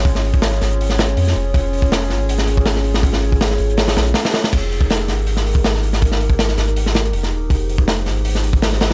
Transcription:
<<
  \new Staff \with { instrumentName = "Ambient pad" } { \time 4/4 \key f \minor \tempo 4 = 161 << { des''1~ | des''1~ | des''1 | bes'1~ |
bes'1 | c''1 | } \\ { <des' f' aes'>1~ | <des' f' aes'>1~ | <des' f' aes'>1 | <ees' g' aes'>1~ |
<ees' g' aes'>1~ | <ees' g' aes'>1 | } >> }
  \new Staff \with { instrumentName = "Sub bass" } { \clef bass \time 4/4 \key f \minor aes,,4. aes,,4. f,8 f,,8 | f,,4. aes,,2~ aes,,8~ | aes,,4. aes,,4 bes,,8 r4 | f,,4. aes,,2~ aes,,8~ |
aes,,4. aes,,4. f,,8 ees,,8 | f,,4. aes,,2~ aes,,8 | }
  \new DrumStaff \with { instrumentName = "Drums" } \drummode { \time 4/4 <hho bd>16 sn16 hho16 bd16 <hho sn>16 sn16 <hho sn>16 hh16 hho16 sn16 <hho sn>16 hh16 hho16 sn8. | <hho bd>8 hho16 bd16 <hho sn>8 <hho sn>8 hho16 sn16 hho16 bd16 <hho sn>16 sn16 hho16 sn16 | <hho bd>16 sn16 hho16 bd16 <hho sn>16 sn16 hho16 hh16 <hho sn>16 <hho sn>16 <hho sn>16 hh16 <hho sn>16 <hho sn>16 <hho sn>16 <hho sn>16 | <cymc hho bd>8 hho16 bd16 <hho sn>8 <hho sn>8 hho16 sn16 hho16 bd16 <hho sn>16 sn16 hho16 sn16 |
<hho bd>16 sn16 hho16 bd16 <hho sn>16 sn16 <hho sn>16 hh16 hho16 sn16 <hho sn>16 hh16 hho16 sn8. | <hho bd>8 hho16 bd16 <hho sn>8 <hho sn>8 hho16 sn16 hho16 bd16 <hho sn>16 sn16 <hho sn>8 | }
>>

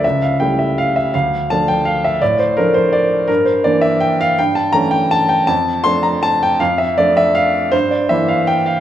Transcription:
<<
  \new Staff \with { instrumentName = "Upright piano" } { \time 3/4 \key d \minor \tempo 4 = 163 e''8 f''8 g''8 e''8 f''8 e''8 | f''4 a''8 g''8 f''8 e''8 | d''8 c''8 bes'8 c''8 d''4 | bes'8 c''8 d''8 e''8 g''8 f''8 |
g''8 a''8 bes''8 g''8 a''8 g''8 | a''4 c'''8 bes''8 a''8 g''8 | f''8 e''8 d''8 e''8 f''4 | c''8 d''8 e''8 f''8 g''8 f''8 | }
  \new Staff \with { instrumentName = "Upright piano" } { \clef bass \time 3/4 \key d \minor cis,4 <g a e'>2 | d,4 <f a d'>2 | a,4 <f a d'>2 | g,4 <e bes d'>2 |
g,4 <e a cis'>2 | f,4 <f a d'>2 | f,4 <f a d'>2 | g,4 <e bes e'>2 | }
>>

